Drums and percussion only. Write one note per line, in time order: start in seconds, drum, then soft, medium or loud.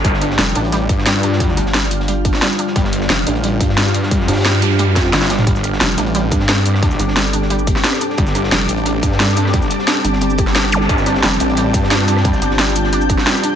0.05 kick loud
0.05 closed hi-hat medium
0.14 snare medium
0.21 closed hi-hat medium
0.30 snare medium
0.38 snare loud
0.38 closed hi-hat medium
0.55 closed hi-hat medium
0.65 closed hi-hat soft
0.72 closed hi-hat medium
0.89 kick loud
0.89 closed hi-hat medium
0.98 snare medium
1.06 snare loud
1.06 closed hi-hat medium
1.23 closed hi-hat medium
1.33 snare medium
1.40 kick loud
1.40 closed hi-hat medium
1.48 snare soft
1.57 closed hi-hat medium
1.66 snare medium
1.74 snare loud
1.74 closed hi-hat medium
1.83 snare soft
1.91 closed hi-hat medium
2.00 snare soft
2.08 closed hi-hat medium
2.25 kick loud
2.25 closed hi-hat medium
2.33 snare soft
2.42 snare loud
2.42 closed hi-hat medium
2.51 snare medium
2.59 closed hi-hat medium
2.67 snare soft
2.76 kick loud
2.76 closed hi-hat medium
2.84 snare medium
2.92 closed hi-hat medium
3.01 snare soft
3.09 snare loud
3.09 closed hi-hat medium
3.26 closed hi-hat medium
3.26 closed hi-hat loud
3.36 closed hi-hat soft
3.44 closed hi-hat medium
3.61 kick loud
3.61 closed hi-hat medium
3.69 snare soft
3.78 snare loud
3.78 closed hi-hat medium
3.86 snare soft
3.94 closed hi-hat medium
4.03 snare medium
4.11 kick loud
4.11 closed hi-hat medium
4.21 snare soft
4.28 snare medium
4.28 closed hi-hat medium
4.28 closed hi-hat loud
4.32 snare loud
4.32 closed hi-hat medium
4.37 snare medium
4.37 closed hi-hat medium
4.40 snare medium
4.40 closed hi-hat medium
4.45 snare loud
4.45 closed hi-hat medium
4.54 snare soft
4.62 closed hi-hat medium
4.62 closed hi-hat loud
4.70 snare soft
4.79 closed hi-hat medium
4.96 kick loud
4.96 snare medium
4.96 closed hi-hat medium
5.05 snare soft
5.13 snare loud
5.13 snare medium
5.13 closed hi-hat medium
5.22 snare medium
5.22 snare soft
5.30 snare loud
5.30 closed hi-hat medium
5.38 snare loud
5.38 closed hi-hat medium
5.38 mid tom medium
5.47 kick loud
5.47 closed hi-hat medium
5.56 snare medium
5.56 shaker soft
5.63 cross-stick soft
5.63 closed hi-hat medium
5.63 closed hi-hat loud
5.63 shaker medium
5.73 snare medium
5.80 snare loud
5.80 closed hi-hat medium
5.98 closed hi-hat medium
5.98 closed hi-hat loud
5.98 shaker medium
6.06 closed hi-hat soft
6.15 closed hi-hat medium
6.32 kick loud
6.32 closed hi-hat medium
6.32 shaker medium
6.40 snare medium
6.48 snare loud
6.48 closed hi-hat medium
6.57 shaker soft
6.66 closed hi-hat medium
6.66 shaker medium
6.74 cross-stick soft
6.74 snare medium
6.83 kick loud
6.83 closed hi-hat medium
6.91 snare soft
6.91 shaker soft
7.00 closed hi-hat medium
7.00 shaker medium
7.08 snare medium
7.16 snare loud
7.16 closed hi-hat medium
7.25 snare soft
7.33 closed hi-hat loud
7.33 closed hi-hat medium
7.33 shaker medium
7.42 snare soft
7.50 closed hi-hat medium
7.59 shaker soft
7.67 kick loud
7.67 closed hi-hat medium
7.67 shaker medium
7.76 cross-stick soft
7.76 snare medium
7.76 snare soft
7.84 snare loud
7.84 closed hi-hat medium
7.93 cross-stick soft
7.93 snare soft
7.93 shaker soft
8.01 closed hi-hat medium
8.01 shaker medium
8.10 snare soft
8.18 kick loud
8.18 closed hi-hat medium
8.27 snare medium
8.27 shaker soft
8.35 cross-stick soft
8.35 closed hi-hat medium
8.35 shaker medium
8.44 snare medium
8.52 snare loud
8.52 closed hi-hat medium
8.68 closed hi-hat medium
8.68 shaker medium
8.77 closed hi-hat soft
8.86 closed hi-hat medium
9.03 kick loud
9.03 closed hi-hat medium
9.03 shaker medium
9.12 snare medium
9.20 snare loud
9.20 closed hi-hat medium
9.28 shaker soft
9.37 closed hi-hat medium
9.37 shaker medium
9.45 cross-stick soft
9.45 snare medium
9.53 kick loud
9.53 closed hi-hat medium
9.62 snare soft
9.62 shaker soft
9.71 closed hi-hat medium
9.71 shaker medium
9.79 snare soft
9.88 snare loud
9.88 closed hi-hat medium
9.96 snare soft
10.05 closed hi-hat medium
10.05 shaker medium
10.13 snare soft
10.21 closed hi-hat medium
10.30 shaker soft
10.38 kick loud
10.38 closed hi-hat medium
10.38 shaker medium
10.47 cross-stick soft
10.47 snare soft
10.55 snare loud
10.55 closed hi-hat medium
10.64 cross-stick soft
10.64 snare medium
10.64 shaker soft
10.72 closed hi-hat medium
10.72 shaker medium
10.81 snare soft
10.89 kick loud
10.89 closed hi-hat medium
10.98 snare medium
10.98 shaker soft
11.06 cross-stick soft
11.06 closed hi-hat medium
11.06 shaker medium
11.15 snare medium
11.23 snare loud
11.23 closed hi-hat medium
11.40 closed hi-hat medium
11.40 shaker medium
11.49 closed hi-hat soft
11.57 closed hi-hat medium
11.74 kick loud
11.74 closed hi-hat medium
11.74 shaker medium
11.83 snare medium
11.91 snare loud
11.91 closed hi-hat medium
12.00 shaker soft
12.08 closed hi-hat medium
12.08 shaker medium
12.17 cross-stick soft
12.17 snare medium
12.24 kick loud
12.24 closed hi-hat medium
12.33 snare soft
12.33 shaker soft
12.42 closed hi-hat medium
12.42 shaker medium
12.51 snare soft
12.58 snare loud
12.58 closed hi-hat medium
12.67 snare soft
12.76 closed hi-hat medium
12.76 shaker medium
12.84 snare soft
12.93 closed hi-hat medium
13.01 shaker soft
13.09 kick loud
13.09 closed hi-hat medium
13.09 shaker medium
13.18 cross-stick soft
13.18 snare soft
13.18 snare medium
13.26 snare loud
13.26 closed hi-hat medium
13.35 cross-stick soft
13.35 snare soft
13.35 shaker soft
13.44 closed hi-hat medium
13.44 shaker medium